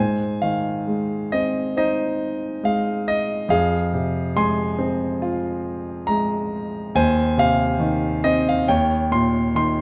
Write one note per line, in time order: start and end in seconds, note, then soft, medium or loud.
0.00 3.47 G#2 soft
0.00 1.74 C5 soft
0.00 0.39 G#5 medium
0.42 2.18 D#3 soft
0.42 1.35 F5 medium
0.87 2.61 G#3 soft
1.32 3.04 C4 soft
1.32 1.76 D#5 medium
1.77 3.47 D#4 soft
1.77 3.47 C5 soft
1.77 2.61 D#5 medium
2.63 3.48 G#3 soft
2.63 3.05 F5 medium
3.08 3.52 D#5 medium
3.49 6.90 F2 medium
3.49 5.19 G#4 medium
3.49 4.39 F5 medium
3.93 5.62 C3 soft
4.36 6.05 G#3 soft
4.36 6.06 G#5 medium
4.36 6.14 C6 medium
4.79 6.48 C4 soft
5.22 6.91 F4 medium
6.07 6.92 G#3 soft
6.07 6.97 A#5 medium
6.95 8.63 D#2 medium
6.95 8.64 C5 medium
6.95 7.35 G#5 loud
7.37 8.63 C3 soft
7.37 8.28 F5 loud
7.79 8.64 D#3 medium
8.24 8.66 C4 soft
8.24 8.46 D#5 medium
8.49 8.69 F5 medium
8.68 9.81 D#2 medium
8.68 9.81 C#5 medium
8.68 9.08 G5 medium
9.11 9.81 A#2 soft
9.11 9.55 C6 medium
9.55 9.81 D#3 soft
9.55 9.81 C6 medium